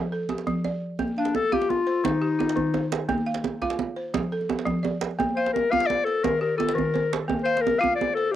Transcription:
Already playing: F3 C5
0.12 A4
0.29 G4, djembe tone
0.38 djembe slap
0.47 F3, djembe bass
0.64 D5, djembe slap, djembe tone
0.99 A#3, djembe tone, djembe bass
1.08 djembe slap
1.16 D4 F5, djembe slap
1.25 djembe slap
1.35 A4, djembe slap, djembe tone
1.52 F4 G4 F5, djembe bass
1.62 djembe slap
1.70 F4, djembe tone
1.87 C5, djembe slap
2.04 D#3 D#4, djembe slap, djembe tone, djembe bass
2.22 G4
2.39 F4, djembe tone
2.49 djembe slap
2.56 D#3, djembe bass
2.74 C5, djembe slap, djembe tone
2.92 djembe slap
3.09 A#3, djembe slap, djembe tone, djembe bass
3.18 djembe slap
3.26 F5
3.34 djembe slap
3.44 djembe tone
3.62 F4 F5, djembe slap, djembe bass
3.70 djembe slap
3.79 djembe tone
3.96 C5
4.14 F3, djembe slap, djembe tone, djembe bass
4.23 djembe slap
4.32 A4, djembe slap
4.41 djembe slap
4.49 G4, djembe tone
4.59 djembe slap
4.65 F3, djembe bass
4.83 D5, djembe tone
5.01 djembe slap
5.11 djembe slap
5.19 A#3, djembe tone, djembe bass
5.29 djembe slap
5.36 C5 F5, djembe slap
5.46 djembe slap
5.53 A#4, djembe slap, djembe tone
5.71 F4 F5, djembe bass
5.80 djembe slap
5.86 D5, djembe tone
6.05 A4 C5, djembe slap
6.24 D#3 A#4, djembe slap, djembe tone, djembe bass
6.41 G4 A#4
6.57 F4 A4, djembe tone
6.69 djembe slap
6.74 D#3 A#4
6.78 djembe bass
6.94 C5, djembe slap, djembe tone
7.13 djembe slap
7.28 A#3, djembe tone, djembe bass
7.39 djembe slap
7.44 C5 F5
7.48 djembe slap
7.57 djembe slap
7.61 A#4
7.67 djembe slap, djembe tone
7.79 F4 F5
7.84 djembe bass
7.96 D5
8.01 djembe tone
8.14 A4 C5, djembe slap
8.31 G4

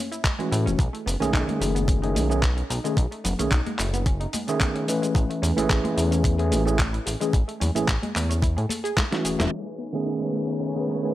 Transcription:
0.11 E4, closed hi-hat, shaker
0.24 G#3, kick, clap, closed hi-hat, shaker
0.39 E3 G#3 A3 C#4 F#4, closed hi-hat
0.52 A2 E4, open hi-hat, shaker
0.66 E1 C#4, closed hi-hat, shaker
0.79 B1 G#3, kick, closed hi-hat, shaker
0.93 A3, closed hi-hat
1.06 F#1 B3, open hi-hat, shaker
1.20 B1 D#3 A3 C#4 G#4, closed hi-hat, high conga, shaker
1.33 B1 D#4, kick, clap, closed hi-hat, shaker
1.47 G#3, closed hi-hat, high conga
1.60 F#1 A3, open hi-hat, shaker
1.75 B3, closed hi-hat, shaker
1.88 C#4, kick, closed hi-hat, shaker
2.02 D#3 A3 C#4 D#4 G#4, closed hi-hat
2.15 B1 G#3, open hi-hat, high conga, shaker
2.29 D#3 A3 C#4 G#4, shaker
2.42 B3, kick, clap, closed hi-hat, shaker
2.57 C#4, closed hi-hat
2.70 B1 D#4, open hi-hat, shaker
2.84 D#3 G#3 A3 C#4 G#4, closed hi-hat, shaker
2.97 B1 G#3, kick, closed hi-hat, shaker
3.11 A3, closed hi-hat
3.24 F#1 B3, open hi-hat, low conga, shaker
3.39 B1 D#3 A3 C#4 G#4, closed hi-hat, high conga, shaker
3.51 B1 D#4, kick, clap, closed hi-hat, shaker
3.66 G#3, closed hi-hat, high conga
3.79 F#1 A3, clap, open hi-hat, shaker
3.94 B3, closed hi-hat, shaker
4.06 C#4, kick, closed hi-hat, shaker
4.20 D#4, closed hi-hat
4.33 G#3, open hi-hat, high conga, shaker
4.48 D#3 A3 C#4 G#4, closed hi-hat, shaker
4.60 B3, kick, clap, closed hi-hat, shaker
4.75 C#4, closed hi-hat
4.88 E3 A3 C#4 D#4 B4, open hi-hat, shaker
5.02 G#3, closed hi-hat, shaker
5.15 A1 G#3, kick, closed hi-hat, shaker
5.30 A3, closed hi-hat
5.42 E2 C#4, open hi-hat, shaker
5.57 A1 E3 A3 C#4 E4 G#4, closed hi-hat, high conga, shaker
5.70 A1 G#4, kick, clap, closed hi-hat, shaker
5.84 G#3, closed hi-hat, high conga
5.96 E2 A3, open hi-hat, shaker
6.11 C#4, closed hi-hat, shaker
6.24 E4, kick, closed hi-hat, shaker
6.38 E3 A3 C#4 G#4, closed hi-hat
6.51 A1 G#3, open hi-hat, high conga, shaker
6.65 E3 A3 C#4 G#4, shaker
6.78 C#4, kick, clap, closed hi-hat, shaker
6.93 E4, closed hi-hat
7.06 A1 G#4, open hi-hat, shaker
7.20 E3 G#3 A3 C#4 G#4, closed hi-hat, shaker
7.33 A1 G#3, kick, closed hi-hat, shaker
7.48 A3, closed hi-hat
7.60 E2 C#4, open hi-hat, high conga, low conga, shaker
7.75 A1 E3 A3 C#4 E4 G#4, closed hi-hat, high conga, shaker
7.88 A1 G#4, kick, clap, closed hi-hat, shaker
8.02 G#3, closed hi-hat, high conga
8.15 E2 A3, clap, open hi-hat, shaker
8.29 C#4, closed hi-hat, shaker
8.42 E4, kick, closed hi-hat, shaker
8.57 A2 G#4, closed hi-hat
8.69 A4, open hi-hat, high conga, shaker
8.84 G#4, closed hi-hat, shaker
8.97 G#3, kick, snare, clap, closed hi-hat, shaker
9.11 E3 A3 C#4 E4 F#4, snare, closed hi-hat
9.25 E1 G#4, open hi-hat, shaker
9.39 E1 E4, snare, closed hi-hat, shaker
9.51 G#3 A3 D#4 B4 C#5 G#5
9.66 A3
9.78 B3, shaker
9.93 D#3 A3 B3 C#4 G#4, shaker
10.06 D#4, shaker
10.20 G#3
10.33 A3, shaker
10.47 B3, shaker
10.60 C#4, shaker
10.75 D#3 A3 B3 C#4 D#4 G#4
10.88 G#3, shaker
11.02 D#3 A3 B3 C#4 G#4, shaker

